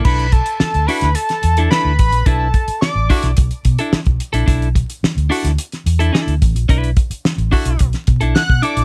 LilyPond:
<<
  \new Staff \with { instrumentName = "Analog synth lead" } { \time 4/4 \key b \minor \tempo 4 = 108 b''8 a''8 a''8 b''8 a''4 b''8 b''8 | a''4 d'''4 r2 | r1 | r2. fis'''8 d'''8 | }
  \new Staff \with { instrumentName = "Tenor saxophone" } { \time 4/4 \key b \minor r4. fis'8 r2 | r4. fis'8 r2 | r4. fis'8 r2 | r4. fis'8. r4. r16 | }
  \new Staff \with { instrumentName = "Clean electric guitar" } { \time 4/4 \key b \minor <d' e' a'>16 r4 r16 <d' e' a'>16 r4 <d' e' a'>16 <d' e' a'>16 r8. | <d' e' b'>16 r4 r16 <d' e' a'>16 r4 <d' e' a'>16 r8. <d' e' a'>16 | <d' e' a'>16 r4 r16 <d' e' a'>16 r4 <d' e' a'>16 <d' e' a'>16 r8. | <d' e' b'>16 r4 r16 <d' e' a'>16 r4 <d' e' a'>16 r8 <d' e' a'>16 r16 | }
  \new Staff \with { instrumentName = "Fingered electric bass" } { \clef bass \time 4/4 \key b \minor b,,8. r8 d,16 r16 d,16 r8 e,8 r16 d,16 a,,16 ais,,16 | b,,8 r8. a,,16 r16 b,,16 b,,16 r16 b,16 r8 b,,16 r16 ais,,16 | b,,8. r8 d,16 r16 d,16 r8 e,8 r16 d,16 a,,16 ais,,16 | b,,8 r8. a,,16 r16 b,,16 b,,16 r16 b,16 b,,16 r16 b,16 r16 ais,,16 | }
  \new DrumStaff \with { instrumentName = "Drums" } \drummode { \time 4/4 <cymc bd>16 hh16 <hh bd>16 hh16 sn16 hh16 hho16 <hh sn>16 hh16 <hh sn>16 hh16 hh16 sn8 <hh bd>16 hh16 | <hh bd>8 <hh bd>16 hh16 sn8 <hho bd>16 <hh sn>16 <hh bd>16 hh16 <hh bd>16 hh16 sn16 <hh bd>16 hh16 hh16 | <hh bd>16 hh16 <hh bd>16 hh16 sn16 hh16 hho16 <hh sn>16 hh16 <hh sn>16 hh16 hh16 sn16 hh16 <hh bd>16 hh16 | <hh bd>16 hh16 <hh bd>16 hh16 sn16 hh16 <hho bd>16 hh16 <hh bd>16 <hh sn>16 <hh bd>16 hh16 sn16 bd16 hh16 hh16 | }
>>